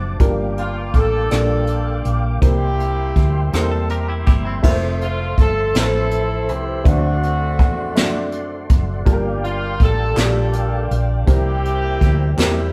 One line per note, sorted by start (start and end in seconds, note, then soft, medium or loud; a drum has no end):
0.00 0.17 F#1 medium
0.00 0.23 A3 medium
0.00 0.23 C4 soft
0.00 0.20 D4 medium
0.00 0.20 F4 soft
0.00 0.22 F#4 medium
0.00 0.22 A4 medium
0.00 0.18 C5 soft
0.00 0.18 F#5 soft
0.00 0.18 A5 soft
0.00 2.38 D6 medium
0.19 0.90 G1 medium
0.19 1.27 G2 medium
0.19 1.02 G3 medium
0.19 4.59 A#3 medium
0.19 1.02 A#3 medium
0.19 1.02 D4 medium
0.19 1.02 F4 medium
0.19 1.02 A#4 medium
0.19 2.40 F5 soft
0.19 2.40 G5 soft
0.19 kick medium
0.19 closed hi-hat medium
0.57 0.93 F4 medium
0.57 closed hi-hat soft
0.94 1.28 A1 medium
0.94 1.31 A4 medium
0.94 kick medium
0.94 closed hi-hat soft
1.30 2.02 A#1 medium
1.30 2.12 G3 soft
1.30 2.13 A#3 soft
1.30 2.13 D4 soft
1.30 2.39 D4 medium
1.30 2.13 F4 soft
1.30 2.13 A4 medium
1.30 2.02 A4 medium
1.30 cross-stick medium
1.30 closed hi-hat medium
1.34 2.40 F4 medium
1.67 closed hi-hat soft
2.05 2.39 A#1 medium
2.05 closed hi-hat soft
2.41 3.12 C2 medium
2.41 3.49 C3 soft
2.41 3.23 G3 medium
2.41 3.24 A#3 medium
2.41 3.50 A#3 medium
2.41 3.24 C4 medium
2.41 3.24 E4 medium
2.41 3.50 E4 medium
2.41 3.50 G4 medium
2.41 3.24 A#4 medium
2.41 4.62 E5 soft
2.41 4.62 G5 soft
2.41 4.62 C6 medium
2.41 kick medium
2.41 closed hi-hat medium
2.80 closed hi-hat soft
3.16 3.50 D2 medium
3.16 kick medium
3.16 closed hi-hat soft
3.53 4.23 E2 medium
3.53 4.35 G3 medium
3.53 4.35 A#3 medium
3.53 4.35 C4 medium
3.53 4.35 E4 medium
3.53 3.70 A4 soft
3.53 3.60 A4 soft
3.53 3.71 C5 soft
3.53 cross-stick medium
3.53 closed hi-hat medium
3.60 4.39 A#4 medium
3.71 3.89 A4 medium
3.89 4.07 G4 medium
3.89 4.08 A#4 medium
3.89 closed hi-hat soft
4.08 4.27 E4 soft
4.08 4.25 G4 medium
4.26 4.61 G1 medium
4.26 4.44 E4 medium
4.26 4.44 G4 medium
4.26 kick medium
4.26 closed hi-hat soft
4.45 4.81 C4 soft
4.45 4.81 E4 medium
4.63 5.34 F1 medium
4.63 5.45 A3 medium
4.63 5.45 C4 medium
4.63 5.46 F4 medium
4.63 9.02 A4 soft
4.63 4.70 A#4 medium
4.63 6.83 C5 medium
4.63 5.45 E5 medium
4.63 9.02 C6 medium
4.63 kick medium
4.63 crash medium
4.70 5.49 C5 medium
5.01 5.36 F4 medium
5.01 closed hi-hat soft
5.38 5.72 G1 medium
5.38 5.74 A4 medium
5.38 kick medium
5.38 closed hi-hat soft
5.74 6.49 A1 medium
5.74 6.57 F3 soft
5.74 6.56 A3 medium
5.74 6.57 C4 soft
5.74 6.57 E4 soft
5.74 5.82 B4 soft
5.74 snare medium
5.74 closed hi-hat medium
5.78 6.83 C4 medium
5.78 6.83 E4 medium
5.78 6.46 A4 medium
5.78 6.60 C5 medium
6.11 closed hi-hat soft
6.48 6.83 C2 medium
6.48 6.86 G4 medium
6.48 closed hi-hat soft
6.84 7.59 D2 medium
6.84 7.92 D3 medium
6.84 7.66 A3 medium
6.84 7.66 C4 medium
6.84 8.30 C4 medium
6.84 7.67 D4 medium
6.84 7.67 F#4 medium
6.84 8.34 F#4 medium
6.84 6.92 B4 medium
6.84 11.24 D5 soft
6.84 9.04 F#5 soft
6.84 kick loud
6.84 closed hi-hat medium
6.88 8.30 A3 medium
6.88 7.70 C5 medium
7.23 closed hi-hat soft
7.59 7.96 E2 medium
7.59 kick medium
7.59 closed hi-hat soft
7.96 8.72 F#2 medium
7.96 8.77 A3 medium
7.96 8.77 C4 medium
7.96 8.78 D4 medium
7.96 8.78 F#4 medium
7.96 8.78 C5 medium
7.96 snare medium
7.96 closed hi-hat medium
8.32 closed hi-hat soft
8.69 9.04 F#1 medium
8.69 kick medium
8.69 closed hi-hat medium
9.05 9.76 G1 medium
9.05 10.13 G2 medium
9.05 9.87 G3 medium
9.05 9.88 A#3 medium
9.05 9.88 D4 medium
9.05 9.88 F4 medium
9.05 12.73 G4 medium
9.05 9.13 A4 medium
9.05 11.25 F5 medium
9.05 12.73 G5 medium
9.05 kick medium
9.05 closed hi-hat medium
9.13 9.91 A#4 medium
9.44 9.78 F4 medium
9.44 closed hi-hat soft
9.80 10.14 A1 medium
9.80 10.18 A4 loud
9.80 kick medium
9.80 closed hi-hat soft
10.16 10.87 A#1 medium
10.16 10.98 G3 medium
10.16 10.98 A#3 medium
10.16 10.98 D4 soft
10.16 11.25 D4 medium
10.16 10.98 F4 medium
10.16 11.25 F4 medium
10.16 10.23 A4 soft
10.16 10.88 A4 medium
10.16 snare medium
10.16 clap medium
10.16 closed hi-hat medium
10.24 11.02 G4 medium
10.53 closed hi-hat medium
10.91 11.25 A#1 medium
10.91 closed hi-hat soft
11.26 11.97 C2 medium
11.26 12.34 C3 medium
11.26 12.09 G3 medium
11.26 12.09 A#3 medium
11.26 12.35 A#3 medium
11.26 12.09 C4 medium
11.26 12.09 E4 medium
11.26 12.36 E4 medium
11.26 12.35 G4 loud
11.26 12.09 A#4 medium
11.26 12.73 C5 soft
11.26 12.73 E5 soft
11.26 kick medium
11.26 closed hi-hat medium
11.65 closed hi-hat soft
12.01 12.35 D2 medium
12.01 kick medium
12.01 closed hi-hat soft
12.37 12.73 E2 medium
12.37 12.73 G3 medium
12.37 12.73 A#3 medium
12.37 12.73 C4 medium
12.37 12.73 E4 medium
12.37 12.73 A#4 medium
12.37 snare medium
12.37 clap medium
12.37 closed hi-hat medium
12.41 12.73 A#3 soft
12.41 12.73 E4 soft
12.41 12.73 G4 medium